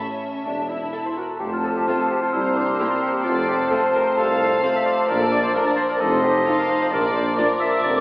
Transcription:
Already playing: viola section C#4, violin section E5, flute section A5
0.45 double bass section E1, tuba E1, cello section E2, viola section D4
0.69 viola section E4
0.92 violin section A4 E5, clarinet A4, glockenspiel A5
1.05 clarinet C5, glockenspiel C6
1.16 viola section F#4, clarinet A#4, glockenspiel A#5
1.29 clarinet A4, glockenspiel A5
1.39 tuba F1, double bass section F1, cello section F2, bassoon F3, french horn section A3 C4, clarinet G4, oboe C5, glockenspiel G5, flute section A5
1.52 clarinet F4, glockenspiel F6
1.64 clarinet A4, glockenspiel A5
1.76 clarinet G4, glockenspiel G5
1.87 viola section A3 C4, clarinet F4, violin section F4, glockenspiel F6
2.00 clarinet A4, glockenspiel A5
2.10 clarinet G4, glockenspiel G5
2.22 clarinet F4, glockenspiel F6
2.32 tuba C2, double bass section C2, cello section C2, bassoon G3, french horn section A#3, clarinet E4, violin section C5, flute section A#5, glockenspiel E6
2.57 clarinet D4, glockenspiel D6
2.79 viola section A#3 C4, clarinet E4, violin section G4, glockenspiel E6
2.90 clarinet F4, glockenspiel F6
3.01 clarinet G4, glockenspiel G5
3.13 clarinet G4, glockenspiel G5
3.24 tuba F1, double bass section F1, cello section F2, bassoon F3, french horn section A3, clarinet F4, violin section D5, flute section A5, glockenspiel F6
3.48 clarinet G4, glockenspiel G5
3.71 viola section A3 C4, violin section F4 C5, clarinet A4, glockenspiel A5
3.95 clarinet A#4, glockenspiel A#5
4.17 cello section C2, double bass section C2, tuba C2, clarinet A4, violin section F5, glockenspiel A5
4.63 viola section A3 C4, violin section F4, clarinet C5, glockenspiel C6
4.76 clarinet E5, glockenspiel E6
4.85 clarinet D5, glockenspiel D6
4.97 clarinet C5, glockenspiel C6
5.09 double bass section A#1, tuba A#1, cello section A#2, french horn section F3 D4, clarinet A#4, oboe D5, violin section D5, glockenspiel A#5
5.20 clarinet A4, glockenspiel A5
5.32 clarinet D5, glockenspiel D6
5.43 clarinet C5, glockenspiel C6
5.54 viola section A3 D4, violin section F4 A#4, clarinet A#4, glockenspiel A#5
5.66 clarinet D5, glockenspiel D6
5.77 clarinet C5, glockenspiel C6
5.89 clarinet A#4, glockenspiel A#5
6.00 tuba F1, double bass section F1, cello section F2, french horn section D#4, clarinet A4, violin section C5, oboe D#5, glockenspiel A5, flute section C6
6.23 clarinet G4, glockenspiel G5
6.46 viola section C4 D#4, violin section F4 F5, clarinet A4, glockenspiel A5
6.58 clarinet A#4, glockenspiel A#5
6.70 clarinet C5, glockenspiel C6
6.82 clarinet C5, glockenspiel C6
6.92 tuba A#1, double bass section A#1, cello section A#2, bassoon F3, french horn section D4, clarinet A#4, oboe D5, violin section D5, glockenspiel A#5, flute section D6
7.15 clarinet C5, glockenspiel C6
7.37 viola section A#3 D4, violin section F4 A#4, clarinet D5, glockenspiel D6
7.60 clarinet E5, glockenspiel E6
7.82 double bass section F1, tuba F1, cello section F2, clarinet D5, glockenspiel D6

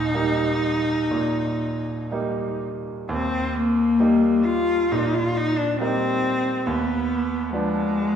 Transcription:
Already playing: grand piano D#1 D#2, cello D#4
0.14 grand piano G3 A#3 D#4
1.11 grand piano A#2
2.12 grand piano G3 A#3 D#4
3.09 grand piano D#2, cello C4
3.55 cello A#3
4.00 grand piano G3 A#3 D#4
4.44 cello F4
4.92 grand piano A#2, cello D#4
5.14 cello F4
5.37 cello D#4
5.58 cello D4
5.80 grand piano G3 A#3 D#4, cello C4
6.66 grand piano D#2, cello B3
7.50 grand piano F3 B3 D4, cello G#3

